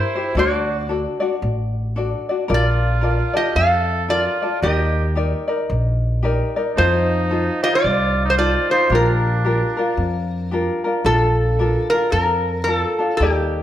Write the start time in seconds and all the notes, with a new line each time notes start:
Already playing: E4 G4 A#4 C5
0.15 E4 G4 C5
0.35 D2 D4 F#4 A4 D5
0.39 D5
0.89 D4 F#4 A4 D5
1.20 D4 F#4 D5
1.42 A1
1.96 D4 F#4 A4 D5
2.29 D4 F#4 D5
2.48 A#1 F4 A4 A#4 D5
2.53 F4 D5
3.01 F4 A4 A#4 D5
3.33 F4 G4 A4 D5 D#5
3.56 F2 A4 F5
4.08 F4 A4 A#4 D5
4.42 F4 A4 D5
4.62 D#2 D#4 G4 A#4 D#5
5.15 D#4 G4 A#4 D5
5.48 D#4 A#4 D5
5.70 A#1
6.23 D#4 G4 A#4 D5
6.56 D#4 A#4 D5
6.76 F2 D#4 F4 A4 C5
7.30 D#4 F4 A4 C5
7.62 D#4 F4 G4 C5 D#5
7.71 F4
7.75 D5
7.84 C2
8.25 D#4
8.30 C5
8.37 D#4 F4 A4 C5 D5
8.70 D#4 F4 C5
8.90 A#1 D4 F4 G4 A#4
8.95 A#4
9.45 D4 F4 G4 A#4
9.77 D4 F4 A#4
9.97 F2
10.51 D4 F4 G4 A#4
10.84 D4 F4 A#4
11.05 A#1 D4 F4 A4
11.59 D4 F4 A4 A#4
11.90 D4 F4 A#4
12.12 F2 A#4
12.64 D4 A#4
12.68 F4 A4
12.75 A4
12.99 D4 F4 A4
13.17 D#2 D#4 G4 A#4
13.22 G4 D5